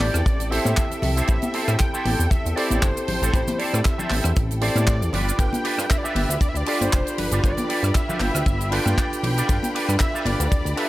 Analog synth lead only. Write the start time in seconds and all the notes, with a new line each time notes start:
Already playing: D5
0.51 E5
1.02 E5
1.79 G5
2.30 E5
2.56 D5
2.82 C5
3.07 C5
3.59 D5
3.85 E5
4.62 D5
5.14 D5
5.39 G5
5.90 E5
5.98 D5
6.05 E5
6.42 D5
6.49 E5
6.57 D5
6.81 C5
7.18 B4
7.45 D5
7.96 E5
8.72 G5
9.24 G5
10.00 E5
10.26 D5
10.77 E5